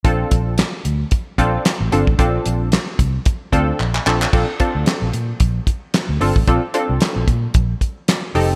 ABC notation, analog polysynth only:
X:1
M:4/4
L:1/8
Q:"Swing 16ths" 1/4=112
K:Bb
V:1 name="Analog polysynth"
[CDFA]2 z3 [CDFA] z [CDFA] | [CDFA]2 z3 [CDFA] z [CDFA] | [CDFA] [CDFA]2 z4 [CDFA] | [CDFA] [CDFA]2 z4 [CEGA] |]